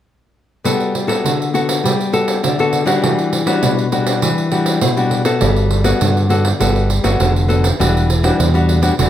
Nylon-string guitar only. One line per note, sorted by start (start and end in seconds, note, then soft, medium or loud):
0.64 1.21 G3 medium
0.64 0.92 B3 soft
0.64 0.92 F#4 soft
0.64 0.93 A4 soft
1.07 1.48 B3 medium
1.07 1.48 F#4 soft
1.07 1.48 A4 soft
1.24 1.81 D3 medium
1.54 1.92 B3 soft
1.54 1.92 F#4 soft
1.54 1.92 A4 soft
1.84 2.40 G3 medium
2.12 2.41 B3 soft
2.12 2.41 F#4 soft
2.12 2.41 A4 medium
2.43 3.00 D3 medium
2.59 2.84 B3 soft
2.59 2.84 F#4 medium
2.59 2.84 A4 medium
2.86 3.41 G3 medium
2.86 3.42 D4 medium
2.86 3.42 F#4 medium
3.02 3.59 E3 medium
3.46 3.87 G3 soft
3.46 3.87 D4 soft
3.46 3.87 F#4 medium
3.62 4.19 B2 medium
3.92 4.47 G3 soft
3.92 4.47 D4 soft
3.92 4.47 F#4 medium
4.22 4.79 E3 medium
4.51 4.79 G3 soft
4.51 4.80 D4 soft
4.51 4.80 F#4 soft
4.81 5.38 B2 medium
4.97 5.21 G3 medium
4.97 5.22 D4 soft
4.97 5.22 F#4 medium
5.25 5.80 B3 medium
5.25 5.80 F#4 medium
5.25 5.81 A4 medium
5.42 5.98 G3 soft
5.84 6.25 B3 soft
5.84 6.25 F#4 medium
5.84 6.25 A4 medium
6.01 6.57 D3 soft
6.29 6.47 B3 soft
6.29 6.48 F#4 soft
6.29 6.48 A4 medium
6.60 7.17 G3 soft
6.60 6.88 B3 soft
6.60 6.88 F#4 soft
6.60 6.88 A4 medium
7.04 7.44 B3 medium
7.04 7.44 F#4 medium
7.04 7.44 A4 medium
7.20 7.77 D3 medium
7.48 7.66 B3 soft
7.48 7.66 F#4 soft
7.48 7.67 A4 soft
7.79 8.36 E3 soft
7.79 8.07 G3 soft
7.79 8.07 D4 soft
7.79 8.08 F#4 soft
8.23 8.49 G3 soft
8.23 8.49 D4 soft
8.23 8.49 F#4 medium
8.39 8.95 B2 soft
8.54 8.79 G3 medium
8.54 8.79 D4 soft
8.54 8.79 F#4 medium
8.82 8.93 G3 medium
8.82 8.93 D4 medium
8.82 8.93 F#4 medium
8.99 9.10 E3 soft
8.99 9.10 G3 soft
8.99 9.10 D4 soft
8.99 9.10 F#4 soft